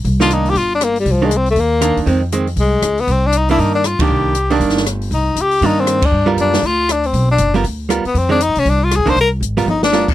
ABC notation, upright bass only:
X:1
M:4/4
L:1/8
Q:"Swing" 1/4=237
K:Gphr
V:1 name="Upright bass" clef=bass
C,,4 G,,,4 | C,,4 E,,3 E,, | F,,4 C,,2 _D,,2 | C,,4 G,,3 z |
C,,4 G,,,4 | C,,2 _D,,2 G,,3 F,, | G,,2 ^F,,2 D,,4 | =B,,,2 ^F,,,2 D,,3 z |
F,,2- (3F,, A,, C, C,,2- (3C,, E,, _D,, | C,,2 A,,,2 G,,,4 |]